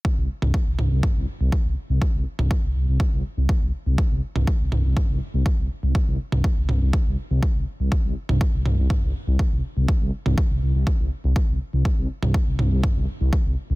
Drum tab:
T2 |---o--o-o-------|---o------------|---o--o-o-------|---o--o---------|
BD |o---o---o---o---|o---o---o---o---|o---o---o---o---|o---o---o---o---|

T2 |---o--o-o-------|---o------------|---o--o-o-------|
BD |o---o---o---o---|o---o---o---o---|o---o---o---o---|